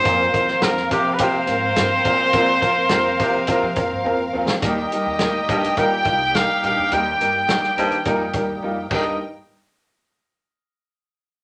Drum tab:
CC |----------------|----------------|----------------|--------------x-|
HH |x-x-x-x-x-x-x-x-|x-x-x-x-x-x-----|x-x-x-xxx-x-x-x-|x-x-x-xxx-x-----|
SD |---ooo------o---|----o----------o|----o-------o---|----oo----------|
BD |o-o---o-o-----o-|o-o---o-o-o-----|o-----o-o-o-----|--------o-o---o-|

CC |----------------|
HH |----------------|
SD |----------------|
BD |----------------|